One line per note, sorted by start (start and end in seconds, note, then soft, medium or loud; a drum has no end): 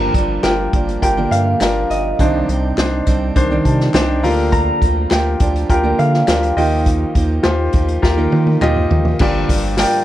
0.00 0.15 G2 medium
0.00 0.69 G2 medium
0.00 0.15 D3 medium
0.00 0.13 F3 loud
0.00 0.14 A#3 medium
0.00 0.15 D4 medium
0.00 0.32 F4 medium
0.00 0.16 G4 medium
0.00 0.32 G4 medium
0.00 0.32 A#4 medium
0.00 1.25 A#5 medium
0.14 0.39 G1 medium
0.14 0.72 F3 medium
0.14 0.73 A#3 medium
0.14 0.74 D4 medium
0.14 0.75 G4 medium
0.14 kick medium
0.14 closed hi-hat medium
0.43 0.68 G1 medium
0.43 0.91 F4 medium
0.43 0.90 G4 medium
0.43 0.91 A#4 medium
0.43 1.02 G5 medium
0.43 snare loud
0.43 clap medium
0.43 closed hi-hat medium
0.73 0.97 G1 medium
0.73 1.17 F3 medium
0.73 1.17 A#3 medium
0.73 1.16 D4 medium
0.73 1.16 G4 medium
0.73 kick medium
0.73 closed hi-hat medium
0.89 closed hi-hat soft
1.02 1.27 G1 loud
1.02 1.49 F4 medium
1.02 1.49 G4 medium
1.02 1.49 A#4 medium
1.02 2.57 G5 medium
1.02 kick medium
1.02 closed hi-hat medium
1.17 1.62 G2 medium
1.17 1.62 D3 medium
1.17 1.59 F3 medium
1.17 1.60 A#3 medium
1.17 1.61 D4 medium
1.17 1.61 G4 medium
1.31 1.55 G2 medium
1.31 2.98 F5 medium
1.31 closed hi-hat medium
1.60 1.85 G1 loud
1.60 2.19 F3 medium
1.60 2.20 A#3 medium
1.60 2.20 D4 medium
1.60 2.08 F4 medium
1.60 2.08 G4 medium
1.60 2.21 G4 medium
1.60 2.08 A#4 medium
1.60 snare loud
1.60 clap medium
1.60 closed hi-hat medium
1.90 2.14 G1 medium
1.90 3.68 D#5 medium
1.90 closed hi-hat medium
2.19 2.44 C2 medium
2.19 2.49 C3 medium
2.19 3.03 C3 medium
2.19 2.49 D#3 medium
2.19 2.47 G3 medium
2.19 2.48 C4 loud
2.19 2.66 D4 medium
2.19 2.49 D4 loud
2.19 2.66 D#4 medium
2.19 2.50 G4 loud
2.19 2.67 C5 medium
2.19 kick medium
2.19 closed hi-hat medium
2.48 2.73 C2 loud
2.48 3.06 G3 medium
2.48 3.06 C4 medium
2.48 3.08 D4 medium
2.48 3.08 G4 medium
2.48 closed hi-hat medium
2.78 3.02 C2 medium
2.78 3.25 D4 medium
2.78 3.25 D#4 medium
2.78 3.25 C5 medium
2.78 snare loud
2.78 clap medium
2.78 closed hi-hat medium
3.06 3.31 C2 loud
3.06 3.51 G3 medium
3.06 3.51 C4 medium
3.06 3.50 D4 medium
3.06 3.49 G4 medium
3.06 kick medium
3.06 closed hi-hat medium
3.36 3.60 C2 medium
3.36 3.83 D#3 medium
3.36 3.83 D4 medium
3.36 3.83 C5 medium
3.36 kick medium
3.36 closed hi-hat medium
3.51 3.96 C3 medium
3.51 3.96 D#3 medium
3.51 3.93 G3 medium
3.51 3.93 C4 medium
3.51 3.95 D4 medium
3.51 3.95 G4 medium
3.65 3.90 C3 loud
3.65 3.93 A5 medium
3.65 kick medium
3.65 closed hi-hat medium
3.80 snare soft
3.94 4.25 C2 loud
3.94 4.24 G3 medium
3.94 4.24 C4 medium
3.94 4.24 D4 medium
3.94 4.24 D#4 medium
3.94 4.24 G4 medium
3.94 4.24 C5 medium
3.94 4.22 G5 medium
3.94 snare medium
3.94 clap medium
3.94 closed hi-hat medium
4.23 4.72 D2 loud
4.23 4.82 D3 medium
4.23 5.08 D3 medium
4.23 4.82 F3 medium
4.23 4.83 A#3 medium
4.23 4.83 D4 medium
4.23 4.94 F4 medium
4.23 4.94 G4 medium
4.23 4.85 G4 medium
4.23 4.94 A#4 loud
4.23 4.51 F5 medium
4.23 open hi-hat medium
4.52 5.92 A#5 loud
4.52 kick medium
4.52 closed hi-hat medium
4.82 5.06 D2 loud
4.82 5.39 F3 medium
4.82 5.40 A#3 medium
4.82 5.40 D4 medium
4.82 5.42 G4 medium
4.82 kick medium
4.82 closed hi-hat medium
5.10 5.36 D2 loud
5.10 5.57 F4 medium
5.10 5.58 G4 medium
5.10 5.58 A#4 medium
5.10 5.69 G5 medium
5.10 snare medium
5.10 clap medium
5.10 closed hi-hat medium
5.39 5.65 D2 loud
5.39 5.83 F3 medium
5.39 5.83 A#3 medium
5.39 5.82 D4 medium
5.39 5.82 G4 medium
5.39 kick medium
5.39 closed hi-hat medium
5.55 closed hi-hat medium
5.69 5.94 D2 medium
5.69 6.16 F4 medium
5.69 6.16 G4 medium
5.69 6.17 A#4 medium
5.69 6.57 G5 medium
5.69 kick medium
5.69 closed hi-hat medium
5.83 6.29 D3 medium
5.83 6.25 F3 medium
5.83 6.27 A#3 medium
5.83 6.28 D4 medium
5.83 6.28 G4 medium
5.99 6.23 D3 loud
5.99 7.65 F5 medium
5.99 closed hi-hat medium
6.13 snare soft
6.27 6.52 D2 loud
6.27 6.56 F3 medium
6.27 6.56 A#3 medium
6.27 6.57 D4 medium
6.27 6.55 F4 medium
6.27 6.55 G4 medium
6.27 6.57 G4 medium
6.27 6.57 A#4 medium
6.27 snare medium
6.27 clap medium
6.27 closed hi-hat loud
6.43 closed hi-hat soft
6.57 7.05 D#2 medium
6.57 7.16 D#3 medium
6.57 7.41 D#3 medium
6.57 7.14 F3 medium
6.57 7.15 A#3 medium
6.57 7.15 D#4 medium
6.57 7.27 F4 medium
6.57 7.27 G4 medium
6.57 7.17 G4 medium
6.57 7.27 D#5 medium
6.57 8.13 G5 medium
6.57 open hi-hat medium
6.86 kick medium
6.86 closed hi-hat medium
7.15 7.40 D#2 loud
7.15 7.73 F3 medium
7.15 7.74 A#3 medium
7.15 7.74 D#4 medium
7.15 7.76 G4 medium
7.15 kick medium
7.15 closed hi-hat medium
7.43 7.69 D#2 loud
7.43 7.91 F4 medium
7.43 7.91 G4 medium
7.43 7.91 C5 medium
7.43 snare loud
7.43 clap medium
7.43 closed hi-hat medium
7.73 7.98 D#2 medium
7.73 8.17 F3 medium
7.73 8.17 A#3 medium
7.73 8.16 D#4 medium
7.73 8.16 G4 medium
7.73 kick loud
7.73 closed hi-hat medium
7.88 closed hi-hat medium
8.02 8.27 D#2 loud
8.02 8.50 F4 medium
8.02 8.50 G4 medium
8.02 8.50 A#4 medium
8.02 kick medium
8.02 snare medium
8.17 8.63 D#3 medium
8.17 8.60 F3 medium
8.17 8.61 A#3 medium
8.17 8.61 D#4 medium
8.17 8.62 G4 medium
8.32 8.57 D#3 loud
8.32 high tom medium
8.47 high tom medium
8.61 8.86 D#2 loud
8.61 9.20 F3 medium
8.61 9.20 A#3 medium
8.61 9.21 D#4 medium
8.61 9.08 F4 medium
8.61 9.08 G4 medium
8.61 9.21 G4 medium
8.61 9.08 D#5 loud
8.61 clap medium
8.61 mid tom medium
8.76 mid tom medium
8.90 9.15 D#2 medium
8.90 floor tom loud
9.05 floor tom medium
9.19 9.44 G1 loud
9.19 9.49 G2 medium
9.19 10.04 G2 medium
9.19 9.50 D3 loud
9.19 9.48 F3 loud
9.19 9.49 A#3 loud
9.19 9.50 D4 medium
9.19 9.67 F4 medium
9.19 9.67 G4 medium
9.19 9.50 G4 loud
9.19 9.67 A#4 medium
9.19 9.67 D5 loud
9.19 kick loud
9.19 crash medium
9.49 9.85 G1 loud
9.49 10.04 F3 medium
9.49 10.04 A#3 medium
9.49 10.04 D4 medium
9.49 10.04 G4 medium
9.49 kick medium
9.49 hi-hat pedal medium
9.49 open hi-hat medium
9.77 10.04 F4 medium
9.77 10.04 G4 medium
9.77 10.04 A#4 medium
9.77 10.04 D5 medium
9.77 10.04 G5 medium
9.77 snare loud
9.77 clap loud
9.77 hi-hat pedal medium
9.77 open hi-hat medium